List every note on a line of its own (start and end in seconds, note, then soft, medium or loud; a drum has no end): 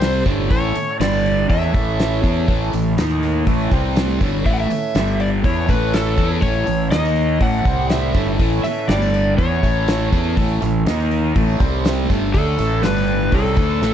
0.00 0.22 C2 medium
0.00 0.37 A2 medium
0.00 4.57 B2 medium
0.00 0.25 C3 medium
0.00 0.99 E3 medium
0.00 0.25 G3 medium
0.00 0.26 G3 medium
0.00 4.03 A3 medium
0.00 0.25 C4 medium
0.00 0.26 C4 medium
0.00 0.26 G4 medium
0.00 0.22 C5 medium
0.00 0.26 C5 medium
0.00 snare loud
0.00 open hi-hat medium
0.00 tambourine medium
0.26 0.49 G1 medium
0.26 0.50 G2 medium
0.26 0.50 D3 medium
0.26 0.50 G3 loud
0.26 1.00 C#4 medium
0.26 1.00 E4 medium
0.26 1.00 A4 medium
0.26 1.00 C#5 medium
0.26 kick loud
0.26 open hi-hat medium
0.26 tambourine medium
0.38 2.82 A2 medium
0.50 0.74 A1 medium
0.50 0.74 A2 medium
0.50 0.75 E3 medium
0.50 0.75 A3 medium
0.50 0.97 C#5 medium
0.50 kick loud
0.50 open hi-hat medium
0.75 muted distorted electric guitar stroke medium
0.75 muted fingered electric bass stroke soft
0.75 open hi-hat medium
0.75 tambourine medium
1.00 1.46 G1 medium
1.00 1.49 G2 medium
1.00 1.48 D3 medium
1.00 3.43 E3 medium
1.00 1.49 G3 medium
1.00 1.48 G3 loud
1.00 1.49 D4 medium
1.00 1.49 G4 medium
1.00 1.46 D5 medium
1.00 1.49 D5 medium
1.00 snare loud
1.00 open hi-hat medium
1.00 tambourine medium
1.13 tambourine medium
1.25 open hi-hat soft
1.25 tambourine soft
1.48 1.73 E2 medium
1.48 1.72 E3 medium
1.48 1.73 B3 medium
1.48 2.96 C#4 medium
1.48 2.96 E4 medium
1.48 1.73 E4 loud
1.48 2.95 A4 medium
1.48 2.96 C#5 medium
1.48 2.20 E5 medium
1.48 kick loud
1.48 open hi-hat medium
1.63 tambourine soft
1.73 2.20 A1 medium
1.73 2.22 A2 medium
1.73 2.22 E3 medium
1.73 2.23 A3 medium
1.73 kick loud
1.73 open hi-hat medium
2.00 snare loud
2.00 open hi-hat medium
2.00 tambourine medium
2.23 2.47 E2 medium
2.23 2.47 E3 medium
2.23 2.47 B3 medium
2.23 2.48 E4 medium
2.23 kick medium
2.23 open hi-hat medium
2.23 tambourine medium
2.48 2.71 A1 medium
2.48 2.72 A2 medium
2.48 2.72 E3 medium
2.48 2.73 A3 loud
2.48 kick medium
2.48 open hi-hat medium
2.73 2.96 A1 medium
2.73 2.93 A2 medium
2.73 2.93 E3 medium
2.73 open hi-hat soft
2.73 tambourine medium
2.83 7.71 A2 medium
2.97 3.44 D#2 medium
2.97 3.46 D#3 medium
2.97 3.47 A#3 loud
2.97 3.46 D#4 medium
2.97 3.47 D#4 medium
2.97 3.46 A#4 medium
2.97 3.46 D#5 medium
2.97 snare loud
2.97 open hi-hat medium
2.97 tambourine medium
3.10 tambourine medium
3.23 open hi-hat soft
3.23 tambourine soft
3.44 3.70 A1 medium
3.44 3.71 A2 medium
3.44 8.34 E3 medium
3.44 3.71 E3 loud
3.44 3.71 C#4 medium
3.44 3.72 E4 medium
3.44 3.71 A4 medium
3.44 3.72 C#5 medium
3.44 kick loud
3.44 open hi-hat medium
3.48 3.72 A3 medium
3.60 tambourine soft
3.71 4.18 C2 loud
3.71 4.21 C3 medium
3.71 4.21 G3 medium
3.71 4.21 C4 medium
3.71 4.20 G4 medium
3.71 4.21 C5 medium
3.71 kick loud
3.71 open hi-hat medium
3.71 tambourine medium
3.96 snare loud
3.96 open hi-hat medium
3.96 tambourine medium
4.04 4.65 A3 medium
4.21 4.44 G1 medium
4.21 4.45 G2 medium
4.21 4.45 D3 medium
4.21 4.46 G3 medium
4.21 4.94 C#4 medium
4.21 4.95 E4 medium
4.21 4.94 A4 medium
4.21 4.95 C#5 medium
4.21 kick loud
4.21 open hi-hat medium
4.21 tambourine medium
4.45 4.69 A1 medium
4.45 4.69 A2 medium
4.45 4.70 E3 medium
4.45 4.70 A3 medium
4.45 4.53 E5 medium
4.45 kick medium
4.45 open hi-hat medium
4.45 tambourine soft
4.54 4.60 F#5 medium
4.59 5.22 E5 medium
4.59 tambourine soft
4.65 8.95 A3 medium
4.70 muted distorted electric guitar stroke soft
4.70 muted fingered electric bass stroke soft
4.70 open hi-hat medium
4.70 tambourine medium
4.83 tambourine soft
4.95 5.41 G1 medium
4.95 5.44 G2 medium
4.95 5.43 D3 loud
4.95 5.44 G3 medium
4.95 5.44 G3 loud
4.95 5.44 D4 medium
4.95 5.44 G4 medium
4.95 5.44 D5 medium
4.95 snare loud
4.95 open hi-hat medium
4.95 tambourine medium
5.07 tambourine medium
5.20 5.27 D5 medium
5.20 open hi-hat soft
5.43 5.67 E2 medium
5.43 5.68 E3 medium
5.43 5.68 B3 medium
5.43 6.90 C#4 medium
5.43 6.90 E4 medium
5.43 5.69 E4 medium
5.43 6.90 A4 medium
5.43 6.90 C#5 medium
5.43 5.70 C#5 medium
5.43 kick loud
5.43 open hi-hat medium
5.68 6.15 A1 medium
5.68 6.16 A2 medium
5.68 6.15 E3 medium
5.68 6.18 A3 medium
5.68 5.95 B4 medium
5.68 kick loud
5.68 open hi-hat medium
5.68 tambourine medium
5.94 6.28 A4 medium
5.94 snare loud
5.94 open hi-hat medium
5.94 tambourine medium
6.06 tambourine soft
6.17 6.41 E2 medium
6.17 6.40 E3 medium
6.17 6.41 B3 medium
6.17 6.42 E4 medium
6.17 kick medium
6.17 open hi-hat medium
6.17 tambourine medium
6.30 tambourine soft
6.41 6.66 A1 medium
6.41 6.65 A2 medium
6.41 6.66 E3 medium
6.41 6.66 A3 medium
6.41 6.91 C#5 medium
6.41 kick loud
6.41 open hi-hat medium
6.67 6.91 A1 medium
6.67 6.87 A2 medium
6.67 6.87 E3 medium
6.67 open hi-hat medium
6.67 tambourine medium
6.91 7.38 D#2 medium
6.91 7.40 D#3 medium
6.91 7.40 A#3 medium
6.91 7.41 D#4 medium
6.91 7.41 D#4 loud
6.91 7.40 D#5 medium
6.91 7.43 D#5 medium
6.91 7.40 A#5 medium
6.91 snare loud
6.91 open hi-hat medium
6.91 tambourine medium
7.05 tambourine medium
7.16 open hi-hat soft
7.16 tambourine soft
7.40 7.64 A1 medium
7.40 7.64 A2 medium
7.40 7.65 E3 medium
7.40 7.65 A3 medium
7.40 7.66 C#4 medium
7.40 7.66 E4 medium
7.40 7.66 A4 medium
7.40 7.65 C#5 medium
7.40 7.91 F#5 loud
7.40 kick loud
7.40 open hi-hat medium
7.54 tambourine soft
7.65 8.12 C2 medium
7.65 8.14 C3 medium
7.65 8.14 G3 medium
7.65 8.15 G3 medium
7.65 8.15 C4 medium
7.65 8.16 G4 medium
7.65 8.16 C5 medium
7.65 kick loud
7.65 open hi-hat medium
7.65 tambourine medium
7.71 12.60 A2 medium
7.90 8.25 E5 medium
7.90 snare loud
7.90 open hi-hat medium
7.90 tambourine medium
8.14 8.38 G1 medium
8.14 8.39 G2 medium
8.14 8.38 D3 medium
8.14 8.39 G3 loud
8.14 8.89 C#4 medium
8.14 8.89 E4 medium
8.14 8.89 A4 medium
8.14 8.89 C#5 medium
8.14 kick loud
8.14 open hi-hat soft
8.14 tambourine medium
8.35 13.21 E3 medium
8.39 8.63 A1 medium
8.39 8.63 A2 medium
8.39 8.64 E3 medium
8.39 8.64 A3 medium
8.39 kick medium
8.39 open hi-hat medium
8.64 8.87 E5 loud
8.64 muted fingered electric bass stroke soft
8.64 muted distorted electric guitar stroke medium
8.64 open hi-hat medium
8.64 tambourine medium
8.88 9.35 G1 medium
8.88 9.37 G2 medium
8.88 9.37 D3 medium
8.88 9.38 G3 medium
8.88 9.37 G3 medium
8.88 9.38 D4 medium
8.88 9.38 G4 medium
8.88 9.38 D5 medium
8.88 snare loud
8.88 open hi-hat medium
8.88 tambourine medium
8.95 11.38 A3 medium
9.02 tambourine medium
9.14 open hi-hat soft
9.14 tambourine soft
9.37 9.61 E2 loud
9.37 9.61 E3 medium
9.37 9.62 B3 medium
9.37 10.84 C#4 medium
9.37 10.84 E4 medium
9.37 9.62 E4 loud
9.37 10.84 A4 medium
9.37 10.84 C#5 medium
9.37 10.08 C#5 medium
9.37 kick loud
9.37 open hi-hat medium
9.52 tambourine soft
9.62 10.09 A1 medium
9.62 10.11 A2 medium
9.62 10.10 E3 medium
9.62 10.12 A3 loud
9.62 kick medium
9.62 open hi-hat medium
9.62 tambourine medium
9.88 snare loud
9.88 open hi-hat medium
9.88 tambourine medium
10.12 10.35 E2 medium
10.12 10.36 E3 medium
10.12 10.36 B3 medium
10.12 10.37 E4 loud
10.12 kick loud
10.12 open hi-hat medium
10.12 tambourine medium
10.36 10.60 A1 medium
10.36 10.60 A2 medium
10.36 10.61 E3 medium
10.36 10.61 A3 medium
10.36 kick loud
10.36 open hi-hat medium
10.61 10.85 A1 medium
10.61 10.81 A2 medium
10.61 10.81 E3 medium
10.61 open hi-hat medium
10.61 tambourine medium
10.79 13.94 D#3 medium
10.85 11.32 D#2 medium
10.85 11.35 D#3 medium
10.85 11.35 A#3 medium
10.85 11.35 D#4 medium
10.85 11.36 D#4 loud
10.85 11.35 A#4 medium
10.85 11.35 D#5 medium
10.85 snare loud
10.85 open hi-hat medium
10.85 tambourine medium
11.00 tambourine medium
11.11 open hi-hat soft
11.11 tambourine soft
11.35 11.59 A1 loud
11.35 11.59 A2 medium
11.35 11.59 E3 medium
11.35 11.60 A3 loud
11.35 12.02 A3 medium
11.35 11.60 C#4 medium
11.35 11.61 E4 medium
11.35 11.60 A4 medium
11.35 11.60 C#5 medium
11.35 kick loud
11.35 open hi-hat medium
11.50 tambourine soft
11.60 12.06 C2 medium
11.60 12.09 C3 medium
11.60 12.09 G3 medium
11.60 12.09 C4 medium
11.60 12.09 G4 medium
11.60 12.09 C5 medium
11.60 kick loud
11.60 open hi-hat medium
11.60 tambourine medium
11.85 snare loud
11.85 open hi-hat medium
11.85 tambourine medium
12.02 13.82 A3 medium
12.09 12.33 G1 medium
12.09 12.33 G2 medium
12.09 12.33 D3 medium
12.09 12.34 G3 loud
12.09 12.83 A3 medium
12.09 12.83 C#4 medium
12.09 12.82 A4 medium
12.09 12.82 E5 medium
12.09 kick medium
12.09 open hi-hat medium
12.09 tambourine medium
12.34 12.57 D2 medium
12.34 12.58 D3 medium
12.34 12.58 A3 medium
12.34 12.58 D4 medium
12.34 12.85 A4 medium
12.34 kick medium
12.34 open hi-hat medium
12.34 tambourine soft
12.47 tambourine soft
12.58 12.82 A1 medium
12.58 12.82 A2 medium
12.58 13.94 A2 medium
12.58 12.83 E3 medium
12.58 12.83 A3 medium
12.58 open hi-hat medium
12.58 tambourine medium
12.72 tambourine soft
12.82 13.29 G1 medium
12.82 13.31 G2 medium
12.82 13.32 D3 medium
12.82 13.32 G3 medium
12.82 13.32 D4 medium
12.82 13.32 G4 medium
12.82 13.34 B4 medium
12.82 13.32 D5 medium
12.82 snare loud
12.82 open hi-hat medium
12.82 tambourine medium
12.96 tambourine medium
13.08 open hi-hat soft
13.08 tambourine soft
13.22 13.94 E3 medium
13.31 13.55 C2 medium
13.31 13.56 C3 medium
13.31 13.57 G3 loud
13.31 13.57 C4 loud
13.31 13.94 C#4 medium
13.31 13.94 E4 medium
13.31 13.94 A4 medium
13.31 13.94 C#5 medium
13.31 kick medium
13.31 open hi-hat medium
13.31 tambourine soft
13.56 13.80 D2 medium
13.56 13.81 D3 medium
13.56 13.81 A3 medium
13.56 13.81 D4 medium
13.56 kick loud
13.56 open hi-hat medium
13.56 tambourine medium
13.71 tambourine soft
13.82 13.94 A1 medium
13.82 13.94 A2 medium
13.82 13.94 E3 medium
13.82 13.94 A3 medium
13.82 snare medium
13.82 tambourine medium